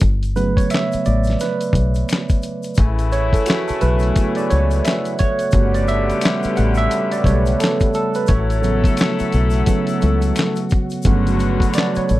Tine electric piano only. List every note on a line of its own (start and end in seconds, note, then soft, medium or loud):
0.36 1.35 C#3 medium
0.36 1.36 F#3 medium
0.36 1.36 A3 medium
0.36 1.36 B3 medium
0.36 0.56 B4 medium
0.57 0.71 C#5 medium
0.71 1.03 E5 medium
1.06 1.21 D5 medium
1.41 2.40 B4 medium
3.12 3.32 C#5 medium
3.33 3.47 A4 medium
3.47 3.57 F#4 medium
3.68 3.81 A4 medium
3.80 4.80 C#3 medium
3.80 4.80 F#3 soft
3.80 4.81 B3 soft
3.80 4.38 B4 medium
4.36 4.50 D5 medium
4.50 4.85 C#5 medium
4.85 5.20 E5 medium
5.19 5.76 C#5 medium
5.53 7.24 C#3 medium
5.53 7.25 A3 medium
5.53 7.25 B3 medium
5.53 8.25 F#4 soft
5.75 5.88 D5 medium
5.88 6.59 E5 loud
6.57 6.79 F#5 medium
6.77 7.13 E5 loud
7.12 7.26 D5 medium
7.25 7.56 C#3 soft
7.25 7.57 G3 soft
7.25 7.57 A3 soft
7.25 7.57 B3 medium
7.25 7.61 C#5 medium
7.60 7.94 A4 medium
7.95 8.16 A4 medium
8.16 8.28 B4 medium
8.28 9.97 C#5 medium
8.62 9.11 C#3 medium
8.62 9.12 F#3 medium
8.62 9.12 B3 medium
9.66 9.98 C#3 medium
9.66 9.98 F#3 soft
9.66 9.98 B3 medium
11.05 12.20 C#3 medium
11.05 12.20 F#3 medium
11.05 12.20 A3 soft
11.05 12.20 B3 medium
11.75 11.96 D5 medium
11.97 12.20 C#5 medium